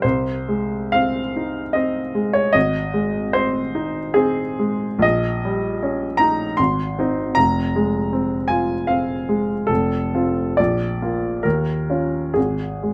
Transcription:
0.02 C2 C5
0.48 G#3
0.92 C4 F5
1.36 D#4
1.73 C4 D#5
2.15 G#3
2.33 C#5
2.53 G#1 D#5
2.94 G#3
3.33 C4 C5
3.75 D#4
4.14 C4 G#4
4.59 G#3
4.99 A#1 D#5
5.45 G3
5.83 C#4
6.17 D#4 A#5
6.57 G#1 C6
6.99 C4 D#4
7.35 F1 A#5
7.76 G#3
8.13 C4
8.48 F4 G#5
8.87 C4 F5
9.29 G#3
9.67 F1 A4
10.15 C4 F4
10.57 A#1 D5
11.02 A#3 F4
11.43 D#2 A#4
11.90 C#4 F4
12.34 G#1 G#4
12.83 G#3

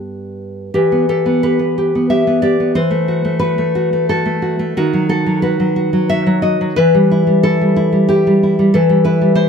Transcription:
Already playing: G2 B3 D4
0.74 E3 G4
0.92 B3
1.09 G4 A4
1.26 B3
1.43 G4 B4
1.59 B3
1.78 G4
1.95 B3
2.10 G4 E5
2.27 B3
2.42 G4 D5
2.60 B3
2.75 E3 C5
2.91 A3
3.08 F#4
3.25 A3
3.39 F#4 B4
3.58 A3
3.75 F#4
3.93 A3
4.09 F#4 A4
4.26 A3
4.42 F#4
4.59 A3
4.77 D#3 F#4
4.93 F#3
5.09 F#4 A4
5.26 F#3
5.42 F#4 B4
5.60 F#3
5.76 F#4
5.93 F#3
6.10 F#4 E5
6.27 F#3
6.42 F#4 D#5
6.61 F#3
6.76 E3 B4
6.95 G3
7.11 E4
7.27 G3
7.43 E4 A4
7.61 G3
7.76 E4
7.92 G3
8.09 E4 G4
8.27 G3
8.43 E4
8.59 G3
8.74 E3 A4
8.89 G3
9.04 E4 B4
9.21 G3
9.35 E4 C5

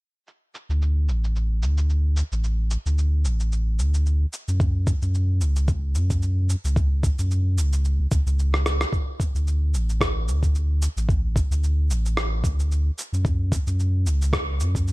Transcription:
0.27 shaker
0.55 shaker
0.69 D2, shaker
0.82 shaker
1.08 A1, shaker
1.24 shaker
1.36 shaker
1.62 D2, shaker
1.78 shaker
1.90 shaker
2.17 shaker
2.32 A1, shaker
2.44 shaker
2.71 shaker
2.86 D2, shaker
2.98 shaker
3.25 A1, shaker
3.40 shaker
3.52 shaker
3.79 D2, shaker
3.94 shaker
4.06 shaker
4.33 shaker
4.48 F#2, shaker
4.60 kick, shaker
4.87 kick, shaker
5.02 F#2, shaker
5.14 shaker
5.41 C#2, shaker
5.56 shaker
5.68 kick, shaker
5.95 F#2, shaker
6.10 kick, shaker
6.22 shaker
6.49 shaker
6.64 C#2, shaker
6.76 kick, shaker
7.03 kick, shaker
7.19 F#2, shaker
7.31 shaker
7.57 C#2, shaker
7.73 shaker
7.85 shaker
8.00 C#2
8.11 C#2, kick, shaker
8.26 C#2, shaker
8.39 shaker
8.54 cross-stick
8.66 cross-stick, shaker
8.81 cross-stick, shaker
8.93 kick, shaker
9.20 kick, shaker
9.34 D2, shaker
9.47 shaker
9.74 A1, shaker
9.89 shaker
10.01 kick, cross-stick, shaker
10.28 D2, shaker
10.43 kick, shaker
10.55 shaker
10.82 shaker
10.97 A1, shaker
11.09 kick, shaker
11.36 kick, shaker
11.51 D2, shaker
11.64 shaker
11.89 A1, shaker
12.06 shaker
12.17 cross-stick, shaker
12.44 D2, kick, shaker
12.60 shaker
12.72 shaker
12.98 shaker
13.13 F#2, shaker
13.25 kick, shaker
13.52 kick, shaker
13.67 F#2, shaker
13.80 shaker
14.06 C#2, shaker
14.22 shaker
14.33 kick, cross-stick, shaker
14.60 F#2, shaker
14.75 kick, shaker
14.88 shaker

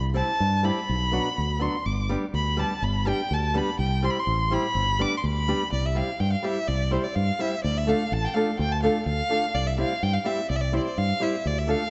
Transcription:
Already playing: C2
0.14 G3 C4 E4 G4 A5
0.40 G2
0.63 G3 C4 E4 G4 B5
0.89 B1
1.12 F#3 B3 D4 F#4
1.38 D2
1.59 F#3 B3 D4 F#4 C6
1.86 G1 D6
2.09 G3 B3 D4 G4
2.34 D2 B5
2.57 G3 B3 D4 G4 A5
2.82 G1 B5
3.05 G3 B3 D4 G4 G5
3.31 D2 A5
3.54 G3 B3 D4 G4 B5
3.79 C2 G5
4.02 G3 C4 E4 G4 C6
4.10 B5
4.20 C6
4.27 A1
4.51 G3 C4 E4 G4 B5
4.75 G1
4.99 G3 B3 D4 G4 D6
5.17 C6
5.24 D2 B5
5.48 G3 B3 D4 G4
5.72 C2 D5
5.85 E5
5.95 G3 C4 E4 G4 F5
6.20 G2 G5
6.33 F5
6.42 G3 C4 E4 G4 E5
6.68 C2 D5
6.91 G3 C4 E4 G4 C5
7.04 D5
7.15 G2 F5
7.39 G3 C4 E4 G4 E5
7.64 D2 D5
7.78 E5
7.87 A3 D4 F4 A4 F5
8.12 A1 A5
8.25 G5 A5
8.34 A3 D4 F4 A4 F5
8.59 D2 G5
8.72 A5
8.83 A3 D4 F4 A4 F5
9.06 D2 F5
9.29 A3 D4 F4 A4
9.55 C2 D5
9.67 E5
9.77 G3 C4 E4 G4 F5
10.03 G2 G5
10.14 F5
10.24 G3 C4 E4 G4 E5
10.50 C2 D5
10.56 E5
10.61 D5
10.72 G3 C4 E4 G4 C5
10.77 C5 D5
10.86 D5
10.98 G2 F5
11.20 G3 C4 E4 G4 E5
11.46 D2 D5
11.58 E5
11.67 A3 D4 F4 A4 F5

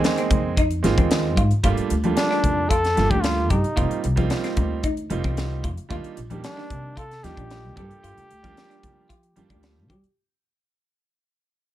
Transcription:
Already playing: G#3 A#3 C4 D#4 G#4
0.04 snare, closed hi-hat
0.18 C4, closed hi-hat
0.30 F2, kick, closed hi-hat, low conga
0.57 D#4, kick, closed hi-hat
0.71 closed hi-hat
0.83 G#1 G#3 A#3 C4 D#4 F4, snare, closed hi-hat, high conga
0.98 D#2 C4, kick, closed hi-hat, high conga
1.11 snare, closed hi-hat
1.37 G#2 F4, kick, closed hi-hat
1.51 muted upright bass stroke, closed hi-hat
1.63 G1 G3 A3 A#3 D4 F4, kick, closed hi-hat
1.77 muted upright bass stroke, closed hi-hat
1.90 D2, closed hi-hat
2.04 G3 A3 A#3 D4 F4, closed hi-hat, high conga
2.17 D4, snare, closed hi-hat
2.31 D4, snare
2.44 F2, kick, closed hi-hat, low conga
2.69 F4 A4, kick, closed hi-hat
2.84 snare, closed hi-hat
2.96 G1 G3 A3 A#3 D4 F4, snare, closed hi-hat, high conga
3.10 D2 D4 G4, kick, closed hi-hat, high conga
3.22 F4, snare, closed hi-hat
3.50 G2 D#4 G4, kick, closed hi-hat, low conga
3.64 muted upright bass stroke, closed hi-hat
3.76 F1 G3 A#3 C4 D#4 F4, kick, closed hi-hat
3.91 muted upright bass stroke, closed hi-hat
4.04 C2, closed hi-hat
4.16 G3 A#3 C4 D#4 F4, kick, closed hi-hat, high conga
4.30 snare, closed hi-hat
4.44 C4, snare, closed hi-hat
4.57 D2, kick, closed hi-hat, low conga
4.83 D#4, kick, closed hi-hat
4.97 closed hi-hat
5.10 F1 G3 A#3 C4 D#4 F4, closed hi-hat, high conga
5.24 C2 C4, kick, closed hi-hat, high conga
5.37 snare, closed hi-hat
5.64 F2 F4, kick, closed hi-hat, low conga
5.77 muted upright bass stroke, closed hi-hat
5.89 D#2 G3 A#3 D4 D#4 F4, kick, closed hi-hat
6.04 muted upright bass stroke, closed hi-hat
6.17 A#1, closed hi-hat
6.30 D#3 G3 A#3 D4 G4, closed hi-hat, high conga
6.44 D4, snare, closed hi-hat
6.57 D4, snare
6.70 C3, kick, closed hi-hat, low conga
6.97 F4 A4, kick, closed hi-hat
7.11 snare, closed hi-hat
7.23 D#2 G3 A#3 D4 D#4 F4 G4, snare, closed hi-hat, high conga
7.37 A#1 D4, kick, closed hi-hat, high conga
7.51 snare, closed hi-hat
7.76 G2 G3 A#3 D4 F4 G4 A4, kick, closed hi-hat, low conga
7.91 muted upright bass stroke, closed hi-hat
8.04 G2 F4, closed hi-hat
8.17 muted upright bass stroke, closed hi-hat, low conga
8.31 D2, closed hi-hat
8.43 G3 A#3 D4 F4 A#4, kick, closed hi-hat, high conga
8.57 snare, closed hi-hat
8.70 D4, closed hi-hat
8.83 F3, kick, closed hi-hat, low conga
9.09 F4, kick, closed hi-hat
9.23 closed hi-hat
9.36 G2 G3 A#3 D4 F4 G4, closed hi-hat, high conga
9.50 D2 D4, kick, closed hi-hat, high conga
9.63 snare, closed hi-hat
9.90 G3 G4, kick, closed hi-hat, low conga
10.04 muted upright bass stroke, closed hi-hat

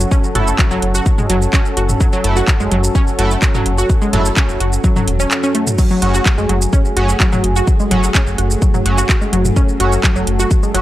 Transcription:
Already playing: F#2 F#3 C#4 F#4 A4
0.00 shaker
0.11 C#4, kick, shaker
0.24 shaker
0.35 F#1 A3 E4 F#4 A4, closed hi-hat, mid tom
0.47 shaker
0.59 F#3, kick, clap, shaker
0.71 F#1 F#3, shaker
0.82 F#1, closed hi-hat
0.95 F#4, shaker
1.06 kick, shaker
1.18 G#3, mid tom, shaker
1.30 F#1 F#3, closed hi-hat
1.42 shaker
1.53 C#4, kick, clap, shaker
1.66 shaker
1.77 F#1 F#4, closed hi-hat
1.89 mid tom, shaker
2.00 F#3, kick, shaker
2.13 F#3, shaker
2.24 F#1 A3 E4 A4, closed hi-hat
2.36 F#4, shaker
2.48 kick, clap, shaker
2.60 F#1 G#3, shaker
2.71 F#1 F#3, closed hi-hat
2.84 shaker
2.95 C#4, kick, shaker
3.07 shaker
3.19 F#1 A3 E4 F#4 A4, closed hi-hat
3.31 shaker
3.42 F#3, kick, clap, shaker
3.55 F#3, mid tom, shaker
3.66 F#1, closed hi-hat
3.78 F#4, shaker
3.90 kick, shaker
4.02 G#3, shaker
4.13 F#1 F#3 A3 E4 A4, closed hi-hat, mid tom
4.25 shaker
4.37 C#4, kick, clap, shaker
4.49 F#1, shaker
4.60 F#1 F#4, closed hi-hat
4.73 shaker
4.84 F#3, kick, shaker
4.96 F#3, mid tom, shaker
5.08 E1, closed hi-hat
5.20 C#4, shaker
5.31 clap, shaker
5.43 C#4, shaker
5.55 A3, closed hi-hat
5.67 mid tom, shaker
5.78 F#2 F#3 A3 F#4 G#4, kick, crash, shaker
5.91 F#3, shaker
6.02 F#1 F#3 C#4 F#4, closed hi-hat
6.14 F#4, shaker
6.26 kick, clap, shaker
6.38 F#1 G#3, shaker
6.49 F#1 F#3, closed hi-hat
6.62 shaker
6.73 C#4, kick, shaker
6.85 shaker
6.96 F#1 F#3 C#4 F#4, closed hi-hat
7.09 shaker
7.20 F#3, kick, clap, shaker
7.32 F#3, mid tom, shaker
7.44 F#1, closed hi-hat
7.56 F#4, shaker
7.67 kick, shaker
7.80 G#3, shaker
7.91 F#1 F#3 C#4 F#4, closed hi-hat, mid tom
8.03 shaker
8.15 C#4, kick, clap, shaker
8.27 F#1, shaker
8.38 F#1 F#4, closed hi-hat
8.51 shaker
8.62 F#3, kick, shaker
8.74 F#3, mid tom, shaker
8.86 F#1 F#3 C#4 F#4, closed hi-hat
8.98 F#4, shaker
9.09 kick, clap, shaker
9.21 G#3, shaker
9.33 F#1 F#3, closed hi-hat
9.45 mid tom, shaker
9.56 C#4 A4, kick, shaker
9.69 shaker
9.80 F#1 F#3 C#4 F#4, closed hi-hat
9.92 shaker
10.04 F#3, kick, clap, shaker
10.16 F#1 F#3, shaker
10.27 F#1, closed hi-hat
10.40 F#4, shaker
10.51 kick, shaker
10.63 G#3, shaker
10.74 F#1 F#3 C#4 F#4, closed hi-hat

